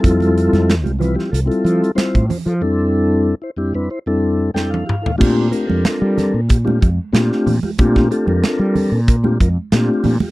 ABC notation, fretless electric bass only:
X:1
M:4/4
L:1/16
Q:1/4=93
K:F
V:1 name="Fretless electric bass" clef=bass
F,,3 F,,2 C,,2 z C,, z F, z2 A,, z F, | z16 | [K:Bb] B,,2 z F,, z G,2 B,,3 F,, z B,, z B,, z | B,,2 z F,, z G,2 B,,3 F,, z B,, z B,, z |]